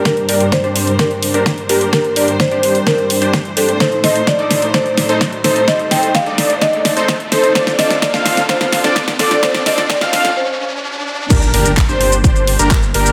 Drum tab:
CC |----------------|----------------|----------------|----------------|
HH |xxoxxxoxxxoxxxox|xxoxxxoxxxoxxxox|xxoxxxoxxxoxxxox|xxoxxxoxxxoxxxox|
SH |----------------|----------------|----------------|----------------|
CP |----------------|----------------|----------------|----------------|
SD |o---o---o---o---|o---o---o---o---|o-o-o-o-o-o-o-o-|o-o-o-o-o-o-o-o-|
BD |o---o---o---o---|o---o---o---o---|o---o---o---o---|o---o---o---o---|

CC |----------------|----------------|x---------------|
HH |xxoxxxoxxxoxxxox|xxoxxxox--------|xxoxxxoxxxoxxxox|
SH |----------------|----------------|xx-xxx-xxx-xxx-x|
CP |----------------|----------------|----x-------x---|
SD |oooooooooooooooo|oooooooo--------|----------------|
BD |o---o---o---o---|o---o-----------|o---o---o---o---|